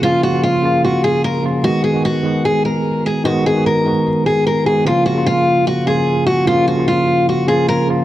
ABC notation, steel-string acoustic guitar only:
X:1
M:4/4
L:1/8
Q:1/4=149
K:Bbphr
V:1 name="Steel-string acoustic guitar"
F G F2 G A B z | G A G2 A B2 A | G A B3 A B A | F G F2 G A2 G |
F G F2 G A B z |]